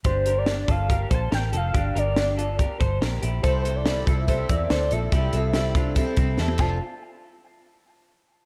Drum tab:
CC |----------------|----------------|----------------|--------------x-|
HH |x-x-x-x-x-x-x-x-|x-x-x-x-x-x-x-x-|x-x-x-x-x-x-x-x-|x-x-x-x-x-x-----|
SD |----o-------o---|----o-------o---|----o-------o---|----o-------o---|
T1 |----------------|----------------|----------------|-------------o--|
BD |o-----o-o-o-----|o-------o-o-----|o-----o-o-o-----|o-----o-o-o---o-|

CC |----------------|
HH |----------------|
SD |----------------|
T1 |----------------|
BD |----------------|